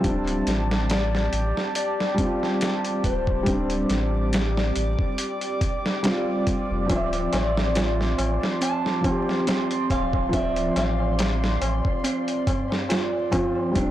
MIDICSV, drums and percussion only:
0, 0, Header, 1, 3, 480
1, 0, Start_track
1, 0, Key_signature, -1, "minor"
1, 0, Tempo, 857143
1, 24, Time_signature, 4, 2, 24, 8
1, 7788, End_track
2, 0, Start_track
2, 0, Title_t, "Tabla"
2, 3861, Note_on_c, 9, 60, 53
2, 3917, Note_off_c, 9, 60, 0
2, 3992, Note_on_c, 9, 60, 24
2, 4048, Note_off_c, 9, 60, 0
2, 4104, Note_on_c, 9, 60, 83
2, 4160, Note_off_c, 9, 60, 0
2, 4238, Note_on_c, 9, 60, 35
2, 4294, Note_off_c, 9, 60, 0
2, 4344, Note_on_c, 9, 60, 45
2, 4400, Note_off_c, 9, 60, 0
2, 4474, Note_on_c, 9, 60, 25
2, 4530, Note_off_c, 9, 60, 0
2, 4582, Note_on_c, 9, 60, 87
2, 4638, Note_off_c, 9, 60, 0
2, 4714, Note_on_c, 9, 60, 38
2, 4770, Note_off_c, 9, 60, 0
2, 4828, Note_on_c, 9, 60, 58
2, 4884, Note_off_c, 9, 60, 0
2, 4955, Note_on_c, 9, 60, 25
2, 5011, Note_off_c, 9, 60, 0
2, 5065, Note_on_c, 9, 60, 90
2, 5121, Note_off_c, 9, 60, 0
2, 5196, Note_on_c, 9, 60, 38
2, 5252, Note_off_c, 9, 60, 0
2, 5305, Note_on_c, 9, 60, 57
2, 5361, Note_off_c, 9, 60, 0
2, 5434, Note_on_c, 9, 60, 22
2, 5490, Note_off_c, 9, 60, 0
2, 5547, Note_on_c, 9, 60, 87
2, 5603, Note_off_c, 9, 60, 0
2, 5676, Note_on_c, 9, 60, 42
2, 5732, Note_off_c, 9, 60, 0
2, 5790, Note_on_c, 9, 60, 50
2, 5846, Note_off_c, 9, 60, 0
2, 5914, Note_on_c, 9, 60, 21
2, 5970, Note_off_c, 9, 60, 0
2, 6025, Note_on_c, 9, 60, 86
2, 6081, Note_off_c, 9, 60, 0
2, 6157, Note_on_c, 9, 60, 40
2, 6213, Note_off_c, 9, 60, 0
2, 6264, Note_on_c, 9, 60, 52
2, 6320, Note_off_c, 9, 60, 0
2, 6396, Note_on_c, 9, 60, 24
2, 6452, Note_off_c, 9, 60, 0
2, 6504, Note_on_c, 9, 60, 84
2, 6560, Note_off_c, 9, 60, 0
2, 6636, Note_on_c, 9, 60, 35
2, 6692, Note_off_c, 9, 60, 0
2, 6742, Note_on_c, 9, 60, 53
2, 6798, Note_off_c, 9, 60, 0
2, 6877, Note_on_c, 9, 60, 22
2, 6933, Note_off_c, 9, 60, 0
2, 6983, Note_on_c, 9, 64, 64
2, 6984, Note_on_c, 9, 60, 81
2, 7039, Note_off_c, 9, 64, 0
2, 7040, Note_off_c, 9, 60, 0
2, 7114, Note_on_c, 9, 60, 35
2, 7170, Note_off_c, 9, 60, 0
2, 7219, Note_on_c, 9, 60, 50
2, 7275, Note_off_c, 9, 60, 0
2, 7355, Note_on_c, 9, 60, 25
2, 7411, Note_off_c, 9, 60, 0
2, 7459, Note_on_c, 9, 60, 92
2, 7462, Note_on_c, 9, 64, 56
2, 7515, Note_off_c, 9, 60, 0
2, 7518, Note_off_c, 9, 64, 0
2, 7595, Note_on_c, 9, 60, 34
2, 7651, Note_off_c, 9, 60, 0
2, 7700, Note_on_c, 9, 60, 49
2, 7756, Note_off_c, 9, 60, 0
2, 7788, End_track
3, 0, Start_track
3, 0, Title_t, "Drums"
3, 23, Note_on_c, 9, 36, 109
3, 23, Note_on_c, 9, 42, 86
3, 79, Note_off_c, 9, 36, 0
3, 79, Note_off_c, 9, 42, 0
3, 154, Note_on_c, 9, 42, 44
3, 210, Note_off_c, 9, 42, 0
3, 262, Note_on_c, 9, 42, 65
3, 271, Note_on_c, 9, 38, 57
3, 318, Note_off_c, 9, 42, 0
3, 327, Note_off_c, 9, 38, 0
3, 400, Note_on_c, 9, 38, 60
3, 456, Note_off_c, 9, 38, 0
3, 502, Note_on_c, 9, 42, 85
3, 510, Note_on_c, 9, 38, 116
3, 558, Note_off_c, 9, 42, 0
3, 566, Note_off_c, 9, 38, 0
3, 642, Note_on_c, 9, 38, 42
3, 698, Note_off_c, 9, 38, 0
3, 743, Note_on_c, 9, 42, 65
3, 799, Note_off_c, 9, 42, 0
3, 881, Note_on_c, 9, 38, 43
3, 937, Note_off_c, 9, 38, 0
3, 982, Note_on_c, 9, 42, 95
3, 1038, Note_off_c, 9, 42, 0
3, 1123, Note_on_c, 9, 38, 44
3, 1179, Note_off_c, 9, 38, 0
3, 1221, Note_on_c, 9, 42, 69
3, 1222, Note_on_c, 9, 36, 96
3, 1277, Note_off_c, 9, 42, 0
3, 1278, Note_off_c, 9, 36, 0
3, 1361, Note_on_c, 9, 38, 34
3, 1417, Note_off_c, 9, 38, 0
3, 1461, Note_on_c, 9, 42, 86
3, 1470, Note_on_c, 9, 38, 105
3, 1517, Note_off_c, 9, 42, 0
3, 1526, Note_off_c, 9, 38, 0
3, 1593, Note_on_c, 9, 42, 43
3, 1649, Note_off_c, 9, 42, 0
3, 1703, Note_on_c, 9, 36, 89
3, 1703, Note_on_c, 9, 42, 66
3, 1759, Note_off_c, 9, 36, 0
3, 1759, Note_off_c, 9, 42, 0
3, 1832, Note_on_c, 9, 36, 96
3, 1888, Note_off_c, 9, 36, 0
3, 1940, Note_on_c, 9, 42, 83
3, 1942, Note_on_c, 9, 36, 110
3, 1996, Note_off_c, 9, 42, 0
3, 1998, Note_off_c, 9, 36, 0
3, 2071, Note_on_c, 9, 42, 46
3, 2127, Note_off_c, 9, 42, 0
3, 2181, Note_on_c, 9, 42, 62
3, 2190, Note_on_c, 9, 38, 45
3, 2237, Note_off_c, 9, 42, 0
3, 2246, Note_off_c, 9, 38, 0
3, 2424, Note_on_c, 9, 42, 90
3, 2432, Note_on_c, 9, 38, 115
3, 2480, Note_off_c, 9, 42, 0
3, 2488, Note_off_c, 9, 38, 0
3, 2561, Note_on_c, 9, 38, 56
3, 2617, Note_off_c, 9, 38, 0
3, 2663, Note_on_c, 9, 42, 64
3, 2719, Note_off_c, 9, 42, 0
3, 2792, Note_on_c, 9, 36, 91
3, 2848, Note_off_c, 9, 36, 0
3, 2901, Note_on_c, 9, 42, 91
3, 2957, Note_off_c, 9, 42, 0
3, 3032, Note_on_c, 9, 42, 44
3, 3088, Note_off_c, 9, 42, 0
3, 3143, Note_on_c, 9, 36, 102
3, 3143, Note_on_c, 9, 42, 72
3, 3199, Note_off_c, 9, 36, 0
3, 3199, Note_off_c, 9, 42, 0
3, 3280, Note_on_c, 9, 38, 52
3, 3336, Note_off_c, 9, 38, 0
3, 3381, Note_on_c, 9, 42, 83
3, 3390, Note_on_c, 9, 38, 109
3, 3437, Note_off_c, 9, 42, 0
3, 3446, Note_off_c, 9, 38, 0
3, 3622, Note_on_c, 9, 36, 91
3, 3622, Note_on_c, 9, 42, 64
3, 3678, Note_off_c, 9, 36, 0
3, 3678, Note_off_c, 9, 42, 0
3, 3861, Note_on_c, 9, 42, 88
3, 3863, Note_on_c, 9, 36, 103
3, 3917, Note_off_c, 9, 42, 0
3, 3919, Note_off_c, 9, 36, 0
3, 3992, Note_on_c, 9, 42, 46
3, 4048, Note_off_c, 9, 42, 0
3, 4103, Note_on_c, 9, 42, 66
3, 4111, Note_on_c, 9, 38, 52
3, 4159, Note_off_c, 9, 42, 0
3, 4167, Note_off_c, 9, 38, 0
3, 4242, Note_on_c, 9, 38, 60
3, 4298, Note_off_c, 9, 38, 0
3, 4342, Note_on_c, 9, 42, 90
3, 4351, Note_on_c, 9, 38, 111
3, 4398, Note_off_c, 9, 42, 0
3, 4407, Note_off_c, 9, 38, 0
3, 4484, Note_on_c, 9, 38, 39
3, 4540, Note_off_c, 9, 38, 0
3, 4584, Note_on_c, 9, 42, 66
3, 4640, Note_off_c, 9, 42, 0
3, 4723, Note_on_c, 9, 38, 50
3, 4779, Note_off_c, 9, 38, 0
3, 4825, Note_on_c, 9, 42, 90
3, 4881, Note_off_c, 9, 42, 0
3, 4962, Note_on_c, 9, 38, 44
3, 5018, Note_off_c, 9, 38, 0
3, 5064, Note_on_c, 9, 36, 103
3, 5065, Note_on_c, 9, 42, 72
3, 5120, Note_off_c, 9, 36, 0
3, 5121, Note_off_c, 9, 42, 0
3, 5204, Note_on_c, 9, 38, 35
3, 5260, Note_off_c, 9, 38, 0
3, 5304, Note_on_c, 9, 42, 83
3, 5313, Note_on_c, 9, 38, 111
3, 5360, Note_off_c, 9, 42, 0
3, 5369, Note_off_c, 9, 38, 0
3, 5436, Note_on_c, 9, 42, 42
3, 5492, Note_off_c, 9, 42, 0
3, 5545, Note_on_c, 9, 36, 95
3, 5547, Note_on_c, 9, 42, 67
3, 5601, Note_off_c, 9, 36, 0
3, 5603, Note_off_c, 9, 42, 0
3, 5675, Note_on_c, 9, 36, 90
3, 5731, Note_off_c, 9, 36, 0
3, 5784, Note_on_c, 9, 36, 108
3, 5785, Note_on_c, 9, 42, 82
3, 5840, Note_off_c, 9, 36, 0
3, 5841, Note_off_c, 9, 42, 0
3, 5916, Note_on_c, 9, 42, 46
3, 5972, Note_off_c, 9, 42, 0
3, 6027, Note_on_c, 9, 42, 66
3, 6035, Note_on_c, 9, 38, 46
3, 6083, Note_off_c, 9, 42, 0
3, 6091, Note_off_c, 9, 38, 0
3, 6265, Note_on_c, 9, 42, 94
3, 6274, Note_on_c, 9, 38, 117
3, 6321, Note_off_c, 9, 42, 0
3, 6330, Note_off_c, 9, 38, 0
3, 6405, Note_on_c, 9, 38, 55
3, 6461, Note_off_c, 9, 38, 0
3, 6505, Note_on_c, 9, 42, 64
3, 6561, Note_off_c, 9, 42, 0
3, 6635, Note_on_c, 9, 36, 100
3, 6691, Note_off_c, 9, 36, 0
3, 6745, Note_on_c, 9, 42, 90
3, 6801, Note_off_c, 9, 42, 0
3, 6876, Note_on_c, 9, 42, 42
3, 6932, Note_off_c, 9, 42, 0
3, 6984, Note_on_c, 9, 36, 104
3, 6984, Note_on_c, 9, 42, 68
3, 7040, Note_off_c, 9, 36, 0
3, 7040, Note_off_c, 9, 42, 0
3, 7124, Note_on_c, 9, 38, 53
3, 7180, Note_off_c, 9, 38, 0
3, 7225, Note_on_c, 9, 42, 81
3, 7233, Note_on_c, 9, 38, 115
3, 7281, Note_off_c, 9, 42, 0
3, 7289, Note_off_c, 9, 38, 0
3, 7462, Note_on_c, 9, 42, 67
3, 7463, Note_on_c, 9, 36, 98
3, 7518, Note_off_c, 9, 42, 0
3, 7519, Note_off_c, 9, 36, 0
3, 7703, Note_on_c, 9, 36, 111
3, 7703, Note_on_c, 9, 42, 90
3, 7759, Note_off_c, 9, 36, 0
3, 7759, Note_off_c, 9, 42, 0
3, 7788, End_track
0, 0, End_of_file